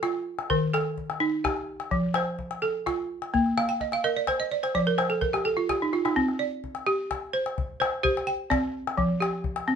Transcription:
0.00 0.73 F4 medium
0.00 0.26 A4 medium
0.00 calabash click medium
0.39 calabash click soft
0.50 0.97 D#3 medium
0.50 1.21 A#4 medium
0.50 calabash thump medium
0.74 1.44 A4 medium
0.74 calabash click medium
0.98 calabash thump medium
1.10 calabash click soft
1.20 1.68 D#4 medium
1.20 calabash click soft
1.44 2.15 G4 medium
1.44 calabash thump medium
1.44 calabash click medium
1.57 calabash click soft
1.80 calabash click soft
1.91 2.39 F3 medium
1.91 calabash thump medium
2.14 2.86 C5 medium
2.14 calabash click medium
2.39 calabash thump medium
2.51 calabash click soft
2.62 3.09 A4 medium
2.62 calabash click soft
2.86 3.57 F4 medium
2.86 calabash thump medium
2.86 calabash click medium
3.22 calabash click soft
3.34 3.81 A#3 medium
3.34 calabash thump medium
3.46 calabash click soft
3.58 3.79 F5 medium
3.58 calabash click medium
3.69 3.91 G5 medium
3.81 4.03 D#5 medium
3.81 calabash thump medium
3.81 calabash click soft
3.92 4.15 F5 medium
3.92 calabash click medium
4.04 4.51 A#4 medium
4.04 4.26 D#5 medium
4.04 calabash click soft
4.17 4.38 D5 medium
4.27 4.50 C5 medium
4.27 calabash thump medium
4.27 calabash click medium
4.40 4.61 D#5 medium
4.51 4.73 D5 medium
4.63 4.85 C5 medium
4.63 calabash click soft
4.75 5.22 F3 medium
4.75 4.97 D5 medium
4.75 calabash thump medium
4.87 5.09 A#4 medium
4.98 5.20 C5 medium
4.98 calabash click medium
5.10 5.32 A4 medium
5.21 5.43 A#4 medium
5.21 calabash thump medium
5.33 5.55 G4 medium
5.33 calabash click soft
5.45 5.67 A4 medium
5.57 5.79 F4 medium
5.69 5.91 G4 medium
5.69 calabash thump medium
5.69 calabash click medium
5.82 6.03 D#4 medium
5.93 6.15 F4 medium
5.93 calabash click soft
6.05 6.26 D#4 medium
6.05 calabash click soft
6.16 6.63 C4 medium
6.16 calabash thump medium
6.29 calabash click soft
6.39 7.10 D5 medium
6.64 calabash thump medium
6.75 calabash click soft
6.87 7.33 G4 medium
6.87 calabash click soft
7.11 calabash thump medium
7.11 calabash click medium
7.33 7.79 C5 medium
7.46 calabash click medium
7.58 calabash thump medium
7.80 8.02 C5 medium
7.80 calabash click medium
8.03 8.50 G4 medium
8.03 8.74 C5 medium
8.03 calabash thump medium
8.17 calabash click medium
8.27 8.97 G5 medium
8.50 8.97 C4 medium
8.50 9.21 D5 medium
8.50 calabash thump medium
8.50 calabash click medium
8.87 calabash click medium
8.98 9.44 F3 medium
8.98 calabash thump medium
9.20 9.75 G4 medium
9.20 calabash click medium
9.44 calabash thump medium
9.56 calabash click medium
9.68 9.75 C4 medium
9.68 calabash click soft

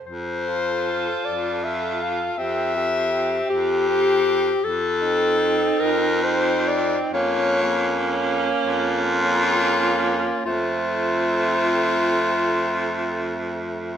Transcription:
0.05 1.11 F2 medium
0.05 1.27 C5 loud
0.45 1.61 F4 medium
0.45 1.61 A4 medium
1.25 2.26 F2 medium
1.25 1.66 D5 loud
1.62 2.37 F4 medium
1.62 2.37 A4 medium
1.62 2.04 E5 loud
2.03 2.40 F5 loud
2.38 3.37 F2 medium
2.38 2.75 C4 medium
2.38 2.75 G4 medium
2.38 3.49 E5 loud
2.76 3.86 C4 medium
2.76 3.86 G4 medium
3.50 4.50 F2 medium
3.50 4.66 G4 loud
3.87 4.61 C4 medium
3.87 4.61 G4 medium
4.63 5.66 F2 medium
4.63 5.82 A4 loud
4.99 6.20 C4 medium
4.99 6.21 D#4 medium
5.80 6.96 F2 loud
5.80 6.26 A#4 loud
6.23 7.11 C4 medium
6.23 7.11 D#4 medium
6.23 6.69 C5 loud
6.68 7.00 D5 loud
7.12 8.47 F2 loud
7.12 7.61 A#3 medium
7.12 7.61 C#4 medium
7.12 8.26 C#5 loud
7.62 9.19 A#3 medium
7.62 9.19 C#4 loud
8.66 10.25 F2 loud
8.66 10.42 F4 loud
9.22 10.43 A#3 medium
9.22 10.44 C#4 medium
10.46 13.97 F2 medium
10.46 13.97 A3 medium
10.46 13.97 C4 medium
10.46 13.97 F4 loud

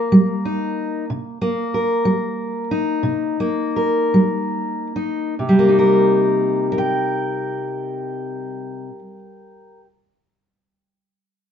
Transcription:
0.00 1.40 A#3 soft
0.00 1.07 A#4 medium
0.12 0.69 G3 medium
0.45 1.04 D#4 soft
1.10 1.66 C3 medium
1.42 3.39 A#3 medium
1.74 3.06 A#4 soft
2.05 2.63 G3 medium
2.71 4.95 D#4 medium
3.03 3.67 C3 medium
3.40 5.58 A#3 medium
3.76 5.34 A#4 soft
4.14 4.87 G3 medium
4.96 5.34 D#4 soft
5.39 8.89 C3 soft
5.49 8.99 G3 soft
5.59 6.72 A#3 soft
5.69 9.19 D#4 soft
5.79 6.72 A#4 soft
6.72 9.80 A#4 medium
6.78 9.86 G5 medium

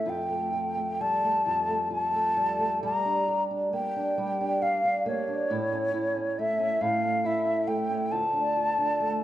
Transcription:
0.00 0.29 A3 soft
0.00 0.15 C#4 soft
0.00 0.11 E5 medium
0.06 1.45 F2 medium
0.06 0.52 F4 soft
0.06 1.03 G5 medium
0.29 0.76 A3 soft
0.53 1.45 F4 soft
0.77 1.22 A3 soft
1.01 2.36 G3 soft
1.01 1.92 A5 medium
1.23 1.68 A3 soft
1.46 2.92 F2 soft
1.46 1.89 F4 soft
1.69 2.12 A3 soft
1.90 2.82 F4 soft
1.90 2.79 A5 medium
2.13 2.58 A3 soft
2.37 2.83 G3 soft
2.59 2.92 A3 soft
2.83 4.17 G3 medium
2.83 3.27 G4 medium
2.83 3.43 A#5 medium
3.05 3.50 D4 soft
3.28 4.17 G4 soft
3.51 3.95 D4 soft
3.73 5.05 A#3 soft
3.73 4.64 G5 medium
3.96 4.40 D4 soft
4.18 5.60 G3 medium
4.18 4.61 G4 soft
4.41 4.83 D4 soft
4.62 5.50 G4 soft
4.62 5.06 F5 medium
4.85 5.27 D4 soft
5.06 5.59 A#3 soft
5.06 6.40 C#5 medium
5.28 5.59 D4 soft
5.50 6.80 A2 medium
5.50 5.92 E4 medium
5.73 6.16 C#4 soft
5.94 6.82 E4 soft
6.17 6.58 C#4 soft
6.39 7.67 A3 soft
6.39 6.83 E5 medium
6.59 7.03 C#4 soft
6.81 8.20 A2 medium
6.81 7.28 F5 medium
7.04 7.44 C#4 soft
7.24 8.12 E4 soft
7.24 7.69 E5 medium
7.45 7.89 C#4 soft
7.67 9.00 A3 soft
7.67 8.13 G5 medium
7.90 8.21 C#4 soft
8.12 9.24 D2 medium
8.12 8.56 F4 medium
8.12 9.24 A5 medium
8.33 8.78 D4 soft
8.57 9.24 F4 soft
8.78 9.24 D4 soft
9.00 9.24 A3 soft

